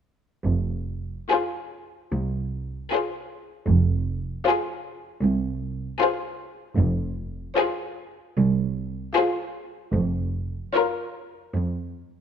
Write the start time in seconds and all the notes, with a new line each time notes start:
0.45 F1 F2
1.29 F4 G#4 C5
2.11 C2
2.92 F4 G#4 C5
3.67 F1 F2
4.46 F4 G#4 C5
5.22 C2
5.99 F4 G#4 C5
6.77 F1 F2
7.56 F4 G#4 C5
8.36 C2
9.15 F4 G#4 C5
9.94 F1 F2
10.74 F4 A#4 C#5
11.54 F2